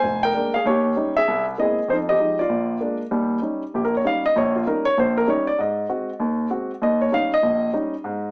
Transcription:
Already playing: C5 G#5
0.04 F1
0.23 A#4 G5
0.34 G#3 A#3 D4
0.54 G#4 F5
0.65 D#2 G4 C#5
0.96 G3 C#4 D#4
1.17 G#4 E5
1.28 C2
1.58 G#3 A#3 C4 E4 D#5
1.62 G#4
1.88 F2 C5
1.92 D#4
2.09 G4 D#5
2.19 F3 G#3 D#4
2.39 F4 D5
2.49 A#1
2.80 G#3 A#3 D4
3.11 D#2 G3
3.42 G3 C#4 D#4
3.74 A#1 G4
3.85 A#4
3.97 C#5
4.04 G3 C#4 D#4 F5
4.26 D#5
4.36 A#1 C#5
4.56 F4
4.66 G3 C#4 D#4 A#4
4.85 C#5
4.98 A#1 C5
5.18 A#4
5.27 G3 C#4 D#4 C#5
5.47 D5
5.59 G#2 D#5
5.89 G#3 C4 F#4
6.20 D#2
6.50 G#3 C4 F#4
6.82 D#2 D#5
7.02 C#5
7.12 G3 C#4 D#4 F5
7.34 D#5
7.43 A#1
7.73 G3 C#4 D#4
8.04 G#2

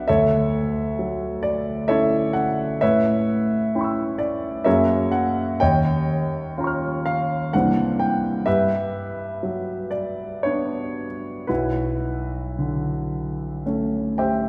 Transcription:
Already playing: B3 D4
0.08 D2 A4 C#5 E5
0.99 F#3
1.43 D5
1.88 C#4 E4 A4 C#5 E5
2.33 F#5
2.81 A2 B4 C#5 E5
3.75 C#4 E4 G5 B5
3.81 C#6 E6
4.18 D5
4.64 F#2 F#3 A#3 C#4 G#4 A#4 C#5 E5
5.12 F#5
5.60 D#2 C#5 D#5 G5
6.58 C#4 F4 F5 A#5
6.64 C#6 F6
7.06 F5
7.53 C2 E3 A#3 C4 D4 F#5
7.99 G5
8.46 G2 G4 B4 E5
9.43 F#3
9.91 D5
10.43 B3 D4 C#5
11.47 B1 E4 F#4 B4
12.59 D3
13.66 A3 C#4
14.18 G4 C5 E5 G5

